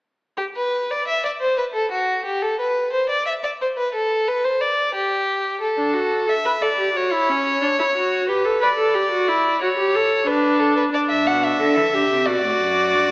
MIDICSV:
0, 0, Header, 1, 4, 480
1, 0, Start_track
1, 0, Key_signature, 1, "major"
1, 0, Tempo, 674157
1, 151, Time_signature, 4, 2, 24, 8
1, 4468, Tempo, 664452
1, 9408, End_track
2, 0, Start_track
2, 0, Title_t, "Violin"
2, 0, Program_c, 0, 40
2, 265, Note_on_c, 0, 67, 63
2, 315, Note_off_c, 0, 67, 0
2, 400, Note_on_c, 0, 71, 64
2, 644, Note_on_c, 0, 74, 70
2, 655, Note_off_c, 0, 71, 0
2, 760, Note_off_c, 0, 74, 0
2, 766, Note_on_c, 0, 76, 68
2, 879, Note_off_c, 0, 76, 0
2, 885, Note_on_c, 0, 74, 65
2, 931, Note_off_c, 0, 74, 0
2, 1002, Note_on_c, 0, 72, 73
2, 1117, Note_off_c, 0, 72, 0
2, 1123, Note_on_c, 0, 71, 69
2, 1170, Note_off_c, 0, 71, 0
2, 1234, Note_on_c, 0, 69, 65
2, 1353, Note_off_c, 0, 69, 0
2, 1361, Note_on_c, 0, 66, 65
2, 1595, Note_off_c, 0, 66, 0
2, 1603, Note_on_c, 0, 67, 62
2, 1721, Note_on_c, 0, 69, 63
2, 1732, Note_off_c, 0, 67, 0
2, 1840, Note_off_c, 0, 69, 0
2, 1852, Note_on_c, 0, 71, 67
2, 2079, Note_off_c, 0, 71, 0
2, 2083, Note_on_c, 0, 72, 67
2, 2199, Note_off_c, 0, 72, 0
2, 2203, Note_on_c, 0, 74, 66
2, 2318, Note_off_c, 0, 74, 0
2, 2321, Note_on_c, 0, 76, 63
2, 2369, Note_off_c, 0, 76, 0
2, 2444, Note_on_c, 0, 74, 55
2, 2491, Note_off_c, 0, 74, 0
2, 2572, Note_on_c, 0, 72, 70
2, 2617, Note_off_c, 0, 72, 0
2, 2688, Note_on_c, 0, 71, 66
2, 2800, Note_off_c, 0, 71, 0
2, 2806, Note_on_c, 0, 69, 71
2, 3045, Note_on_c, 0, 71, 74
2, 3056, Note_off_c, 0, 69, 0
2, 3165, Note_on_c, 0, 72, 69
2, 3176, Note_off_c, 0, 71, 0
2, 3281, Note_on_c, 0, 74, 68
2, 3291, Note_off_c, 0, 72, 0
2, 3516, Note_off_c, 0, 74, 0
2, 3525, Note_on_c, 0, 67, 71
2, 3987, Note_off_c, 0, 67, 0
2, 3992, Note_on_c, 0, 69, 65
2, 4478, Note_on_c, 0, 76, 69
2, 4489, Note_off_c, 0, 69, 0
2, 4716, Note_on_c, 0, 74, 63
2, 4726, Note_off_c, 0, 76, 0
2, 4964, Note_on_c, 0, 73, 69
2, 4975, Note_off_c, 0, 74, 0
2, 5919, Note_off_c, 0, 73, 0
2, 5922, Note_on_c, 0, 71, 62
2, 6162, Note_on_c, 0, 74, 61
2, 6173, Note_off_c, 0, 71, 0
2, 6878, Note_off_c, 0, 74, 0
2, 6882, Note_on_c, 0, 73, 70
2, 7353, Note_on_c, 0, 71, 72
2, 7363, Note_off_c, 0, 73, 0
2, 7591, Note_on_c, 0, 69, 61
2, 7602, Note_off_c, 0, 71, 0
2, 7707, Note_off_c, 0, 69, 0
2, 7712, Note_on_c, 0, 71, 64
2, 7759, Note_off_c, 0, 71, 0
2, 7836, Note_on_c, 0, 74, 68
2, 7883, Note_off_c, 0, 74, 0
2, 7948, Note_on_c, 0, 76, 69
2, 8073, Note_on_c, 0, 78, 64
2, 8084, Note_off_c, 0, 76, 0
2, 8192, Note_on_c, 0, 76, 68
2, 8203, Note_off_c, 0, 78, 0
2, 8791, Note_on_c, 0, 74, 86
2, 8802, Note_off_c, 0, 76, 0
2, 9408, Note_off_c, 0, 74, 0
2, 9408, End_track
3, 0, Start_track
3, 0, Title_t, "Viola"
3, 0, Program_c, 1, 41
3, 4110, Note_on_c, 1, 62, 67
3, 4229, Note_on_c, 1, 66, 69
3, 4240, Note_off_c, 1, 62, 0
3, 4463, Note_off_c, 1, 66, 0
3, 4467, Note_on_c, 1, 69, 72
3, 4516, Note_off_c, 1, 69, 0
3, 4594, Note_on_c, 1, 71, 69
3, 4641, Note_off_c, 1, 71, 0
3, 4714, Note_on_c, 1, 69, 69
3, 4762, Note_off_c, 1, 69, 0
3, 4839, Note_on_c, 1, 67, 69
3, 4951, Note_off_c, 1, 67, 0
3, 4955, Note_on_c, 1, 66, 69
3, 5080, Note_on_c, 1, 64, 75
3, 5090, Note_off_c, 1, 66, 0
3, 5202, Note_on_c, 1, 61, 78
3, 5213, Note_off_c, 1, 64, 0
3, 5433, Note_off_c, 1, 61, 0
3, 5437, Note_on_c, 1, 62, 72
3, 5484, Note_off_c, 1, 62, 0
3, 5562, Note_on_c, 1, 64, 65
3, 5608, Note_off_c, 1, 64, 0
3, 5682, Note_on_c, 1, 66, 72
3, 5922, Note_on_c, 1, 67, 80
3, 5933, Note_off_c, 1, 66, 0
3, 6041, Note_on_c, 1, 69, 74
3, 6051, Note_off_c, 1, 67, 0
3, 6152, Note_off_c, 1, 69, 0
3, 6156, Note_on_c, 1, 71, 81
3, 6204, Note_off_c, 1, 71, 0
3, 6279, Note_on_c, 1, 69, 78
3, 6397, Note_on_c, 1, 67, 71
3, 6408, Note_off_c, 1, 69, 0
3, 6516, Note_off_c, 1, 67, 0
3, 6522, Note_on_c, 1, 66, 72
3, 6643, Note_on_c, 1, 64, 77
3, 6654, Note_off_c, 1, 66, 0
3, 6877, Note_off_c, 1, 64, 0
3, 6881, Note_on_c, 1, 66, 81
3, 6928, Note_off_c, 1, 66, 0
3, 6997, Note_on_c, 1, 67, 77
3, 7123, Note_on_c, 1, 69, 76
3, 7134, Note_off_c, 1, 67, 0
3, 7354, Note_off_c, 1, 69, 0
3, 7359, Note_on_c, 1, 62, 92
3, 7824, Note_off_c, 1, 62, 0
3, 7830, Note_on_c, 1, 62, 73
3, 8314, Note_on_c, 1, 69, 75
3, 8325, Note_off_c, 1, 62, 0
3, 8557, Note_on_c, 1, 67, 74
3, 8568, Note_off_c, 1, 69, 0
3, 8794, Note_on_c, 1, 66, 80
3, 8805, Note_off_c, 1, 67, 0
3, 9408, Note_off_c, 1, 66, 0
3, 9408, End_track
4, 0, Start_track
4, 0, Title_t, "Cello"
4, 0, Program_c, 2, 42
4, 7949, Note_on_c, 2, 43, 78
4, 8068, Note_on_c, 2, 47, 86
4, 8079, Note_off_c, 2, 43, 0
4, 8305, Note_off_c, 2, 47, 0
4, 8309, Note_on_c, 2, 50, 85
4, 8431, Note_on_c, 2, 52, 72
4, 8442, Note_off_c, 2, 50, 0
4, 8547, Note_off_c, 2, 52, 0
4, 8552, Note_on_c, 2, 50, 75
4, 8666, Note_off_c, 2, 50, 0
4, 8670, Note_on_c, 2, 48, 80
4, 8787, Note_off_c, 2, 48, 0
4, 8792, Note_on_c, 2, 47, 86
4, 8840, Note_off_c, 2, 47, 0
4, 8908, Note_on_c, 2, 45, 74
4, 9028, Note_off_c, 2, 45, 0
4, 9031, Note_on_c, 2, 42, 82
4, 9272, Note_on_c, 2, 43, 89
4, 9283, Note_off_c, 2, 42, 0
4, 9405, Note_off_c, 2, 43, 0
4, 9408, End_track
0, 0, End_of_file